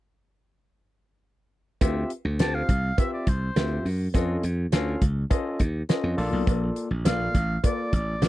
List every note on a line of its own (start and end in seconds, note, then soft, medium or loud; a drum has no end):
1.81 2.03 D2 medium
1.81 2.10 C4 medium
1.81 2.10 F4 medium
1.81 2.10 G4 medium
1.81 2.11 E5 loud
1.81 kick medium
1.81 closed hi-hat medium
1.81 cowbell medium
2.10 closed hi-hat medium
2.25 2.36 D2 medium
2.39 2.61 D2 loud
2.39 2.68 C4 medium
2.39 2.68 F4 medium
2.39 2.69 G4 medium
2.39 2.69 C5 medium
2.39 2.56 A5 loud
2.39 snare loud
2.39 closed hi-hat loud
2.39 cowbell medium
2.55 3.00 F5 loud
2.69 2.91 C2 medium
2.69 kick medium
2.69 closed hi-hat medium
2.98 3.27 C4 medium
2.98 3.27 F4 medium
2.98 3.27 G4 medium
2.98 3.13 E5 loud
2.98 3.27 E5 loud
2.98 kick loud
2.98 closed hi-hat medium
2.98 cowbell medium
3.14 3.30 D5 medium
3.27 3.49 C2 medium
3.27 3.86 C5 medium
3.27 kick medium
3.27 closed hi-hat medium
3.56 3.78 D2 medium
3.56 3.85 C4 medium
3.56 3.85 F4 medium
3.56 3.86 G4 medium
3.56 3.86 E5 medium
3.56 snare loud
3.56 closed hi-hat medium
3.56 cowbell medium
3.85 4.07 F#2 medium
3.85 open hi-hat medium
4.14 4.36 F2 medium
4.14 4.43 C#4 loud
4.14 4.43 F4 loud
4.14 4.44 A4 medium
4.14 4.44 D#5 loud
4.14 kick loud
4.14 closed hi-hat medium
4.14 cowbell medium
4.43 4.65 F2 loud
4.43 closed hi-hat medium
4.72 4.95 D2 loud
4.72 5.01 C#4 loud
4.72 5.01 F4 medium
4.72 5.02 A4 medium
4.72 5.02 F5 loud
4.72 snare loud
4.72 closed hi-hat medium
4.72 cowbell medium
5.01 5.24 C#2 medium
5.01 kick medium
5.01 closed hi-hat medium
5.30 5.59 C#4 medium
5.30 5.59 F4 medium
5.30 5.59 A4 medium
5.30 5.60 D#5 loud
5.30 kick loud
5.30 closed hi-hat medium
5.30 cowbell medium
5.59 5.82 D#2 medium
5.59 kick medium
5.59 closed hi-hat medium
5.89 6.18 C#4 medium
5.89 6.17 F4 medium
5.89 6.17 A4 medium
5.89 6.18 D#5 loud
5.89 snare loud
5.89 closed hi-hat medium
5.89 cowbell medium
6.03 6.14 F2 medium
6.17 6.29 A#1 medium
6.17 6.88 A#3 loud
6.17 6.88 F4 medium
6.17 6.88 A4 medium
6.17 6.88 D5 medium
6.17 open hi-hat medium
6.33 6.44 B1 medium
6.47 6.69 A#1 loud
6.47 kick loud
6.47 closed hi-hat medium
6.47 cowbell medium
6.76 closed hi-hat medium
6.91 7.02 A#1 medium
7.05 7.27 A#1 medium
7.05 7.35 A#3 medium
7.05 7.35 F4 medium
7.05 7.35 A4 medium
7.05 7.35 D5 medium
7.05 7.60 F5 loud
7.05 snare loud
7.05 closed hi-hat loud
7.05 cowbell medium
7.35 7.57 A1 medium
7.35 kick medium
7.35 closed hi-hat medium
7.64 7.93 A#3 medium
7.64 7.92 F4 medium
7.64 7.93 A4 medium
7.64 7.93 D5 medium
7.64 7.92 D5 loud
7.64 kick loud
7.64 closed hi-hat medium
7.64 cowbell medium
7.93 8.15 A1 loud
7.93 8.28 D5 loud
7.93 kick medium
7.93 closed hi-hat medium
8.21 8.28 A#1 loud
8.21 8.28 A#3 medium
8.21 8.28 F4 medium
8.21 8.28 A4 medium
8.21 8.28 D5 medium
8.21 snare loud
8.21 closed hi-hat medium
8.21 cowbell medium